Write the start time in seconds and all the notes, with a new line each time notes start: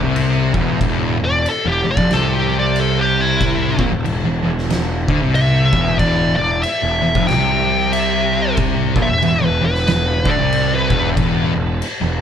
0.03 C2 C3
0.16 crash
0.53 E1 E2, kick
0.81 E1 E2, kick, crash
1.20 E1 E2
1.25 D5
1.46 A4, crash
1.65 E1 E2 G4
1.84 E1 E2
1.91 D5
1.97 F1 F2, kick, snare
2.10 C2 C3 A4, snare, crash
2.35 G4
2.59 D5
2.76 crash
2.80 A4
3.01 G4
3.21 E4
3.41 kick, crash
3.78 A#1 A#2, kick
3.91 E1 E2
4.05 E1 E2, crash
4.25 E1 E2
4.43 E1 E2
4.58 snare
4.70 E1 E2, snare, crash
5.08 D2 D3, kick
5.22 C2 C3
5.35 E5, crash
5.73 E1 E2, kick
5.99 E1 E2 D5, kick, crash
6.36 E1 E2 D5
6.63 E5, crash
6.83 E1 E2
7.02 E1 E2
7.15 F1 F2, kick, snare
7.27 C2 C3 G5, snare, crash
7.92 E5, crash
8.57 kick, crash
8.96 A#1 A#2, kick
9.02 E5
9.09 E1 E2
9.22 E1 E2, crash
9.42 E1 E2 B4
9.61 E1 E2
9.65 B4
9.75 snare
9.87 E1 E2, snare, crash
10.26 D2 D3, kick
10.30 D5
10.39 C2 C3
10.52 crash
10.75 B4
10.90 E1 E2, kick
11.17 E1 E2, kick, crash
11.55 E1 E2
11.82 crash
12.01 E1 E2